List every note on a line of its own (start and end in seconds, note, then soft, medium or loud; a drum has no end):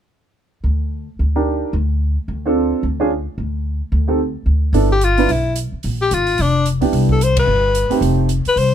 0.64 1.06 D2 medium
1.19 1.62 D2 medium
1.36 1.71 D4 medium
1.36 1.71 D#4 soft
1.36 1.71 G4 soft
1.36 1.71 A#4 medium
1.73 2.16 D2 medium
2.28 2.71 D2 medium
2.46 2.81 C4 medium
2.46 2.81 D4 soft
2.46 2.81 F4 soft
2.46 2.82 A4 medium
2.83 3.26 D2 medium
3.00 3.09 C#4 medium
3.00 3.09 D4 medium
3.00 3.09 F4 medium
3.00 3.10 G#4 medium
3.38 3.80 D2 medium
3.92 4.35 D2 medium
4.08 4.18 C4 soft
4.08 4.18 D#4 soft
4.08 4.18 G4 soft
4.08 4.18 A4 medium
4.46 4.72 D2 medium
4.73 5.25 G1 medium
4.73 4.89 B3 medium
4.73 4.89 D4 soft
4.73 4.89 E4 soft
4.73 4.89 A4 medium
4.73 open hi-hat soft
4.92 5.06 G4 medium
5.01 5.33 F4 medium
5.01 closed hi-hat soft
5.17 5.28 B3 medium
5.17 5.28 D4 soft
5.17 5.28 E4 soft
5.17 5.28 B4 medium
5.17 open hi-hat soft
5.29 5.69 B1 medium
5.29 5.58 E4 medium
5.29 open hi-hat soft
5.56 closed hi-hat soft
5.72 muted upright bass stroke soft
5.83 6.09 A#1 medium
5.83 open hi-hat soft
6.02 6.16 G4 medium
6.11 6.36 G#1 medium
6.11 6.43 F4 medium
6.11 closed hi-hat soft
6.27 open hi-hat soft
6.38 6.79 F1 medium
6.38 6.67 D4 medium
6.38 open hi-hat soft
6.66 closed hi-hat soft
6.81 6.92 C#2 medium
6.81 7.17 B3 medium
6.81 7.18 D4 medium
6.81 7.18 E4 medium
6.81 7.18 G4 medium
6.81 open hi-hat soft
6.93 7.45 C2 medium
6.93 open hi-hat soft
7.09 7.25 A4 medium
7.09 kick soft
7.21 7.38 C5 medium
7.21 closed hi-hat soft
7.37 8.00 B4 medium
7.37 kick medium
7.37 ride medium
7.47 7.88 G1 medium
7.75 closed hi-hat soft
7.90 8.27 A3 medium
7.90 8.27 C4 medium
7.90 8.27 D#4 medium
7.90 8.27 G4 medium
7.90 muted upright bass stroke soft
7.90 open hi-hat soft
8.01 8.42 F1 medium
8.01 open hi-hat soft
8.29 closed hi-hat soft
8.45 8.60 B4 medium
8.45 muted upright bass stroke soft
8.45 open hi-hat soft
8.56 8.74 C2 medium
8.56 8.74 C5 medium
8.56 open hi-hat soft